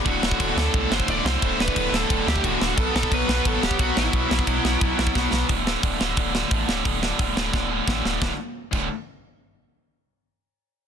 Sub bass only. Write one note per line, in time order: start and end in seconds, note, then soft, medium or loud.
0.06 0.18 D1 loud
0.22 0.35 D1 medium
0.40 0.52 D1 loud
0.56 0.69 D2 medium
0.74 0.86 C2 medium
0.91 1.03 F#1 loud
1.08 1.20 D1 loud
1.25 1.37 C2 medium
1.42 1.55 D1 loud
1.59 1.71 D1 medium
1.76 1.88 D1 loud
1.92 2.04 D1 loud
2.10 2.22 D1 medium
2.27 2.39 D2 loud
2.44 2.56 D1 loud
2.61 2.73 D1 loud
2.77 2.90 B1 loud
2.94 3.07 B1 medium
3.11 3.24 B1 loud
3.28 3.40 B1 medium
3.45 3.58 A1 loud
3.63 3.75 D1 loud
3.79 3.91 B1 loud
3.97 4.09 A1 loud
4.13 4.26 B1 loud
4.31 4.43 B1 medium
4.47 4.59 B1 loud
4.64 4.76 B1 medium
4.81 4.93 B1 medium
4.99 5.10 B1 medium
5.15 5.27 B1 loud
5.32 5.44 B1 loud
5.49 5.77 D1 medium
5.83 5.97 D1 loud
6.01 6.14 D1 medium
6.17 6.45 D1 medium
6.51 6.65 A1 loud
6.68 6.82 D1 medium
6.85 7.13 D1 loud
7.19 7.33 D1 medium
7.36 7.50 D1 medium
7.53 7.81 D1 medium
7.88 8.01 A1 medium
8.04 8.18 D1 medium
8.22 8.31 D1 medium
8.73 8.88 D1 medium